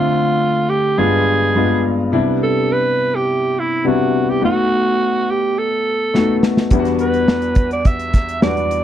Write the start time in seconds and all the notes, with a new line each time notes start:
Already playing: D3 A3 C4 F4 E5
0.69 G4
0.98 G2 G#3 B3 D4 F4 G#4
1.55 G2 G#3 B3 D4 F4
2.12 C3 G3 B3 D4 E4
2.43 A4
2.73 B4
3.15 G4
3.59 E4
3.84 C3 G3 B3 D4 E4 F#4
4.30 G4
4.41 A3 B3 D#4 F#4
5.31 G4
5.58 A4
6.14 A3 B3 D#4 F#4, snare
6.43 snare
6.57 snare
6.71 E2 G3 B3 D4 E4, kick, closed hi-hat
6.79 F#4
6.85 snare, closed hi-hat
6.99 B4, closed hi-hat
7.14 closed hi-hat
7.28 snare
7.42 closed hi-hat
7.55 kick, closed hi-hat
7.71 D5, closed hi-hat
7.85 E5, kick, closed hi-hat
8.00 closed hi-hat
8.14 kick, snare, closed hi-hat
8.29 closed hi-hat
8.42 E2 G3 B3 D4 F#4 D5, snare
8.57 closed hi-hat
8.71 closed hi-hat